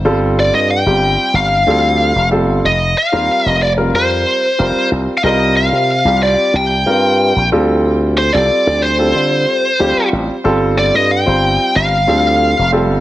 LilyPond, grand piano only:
\new Staff \with { instrumentName = "Grand piano" } { \time 4/4 \key g \minor \tempo 4 = 92 <g c' f' a'>4 r16 <g c' f' g'>4 r16 <g c' f' a'>8. r16 <g c' f' a'>8 | r8. <g c' f' bes'>8. r16 <g c' f' bes'>4 r16 <g c' f' bes'>8. r16 | <g c' f' bes'>4 r16 <g c' f' g'>4 r16 <g c' f' bes'>8. r16 <g c' f' a'>8~ | <g c' f' a'>8 r16 <g c' f' a'>8. r16 <g c' f' a'>4 r16 <g c' f' g'>8. r16 |
<g c' f' a'>4 r16 <g c' f' c''>4 r16 <g c' f' a'>8. r16 <g c' f' a'>8 | }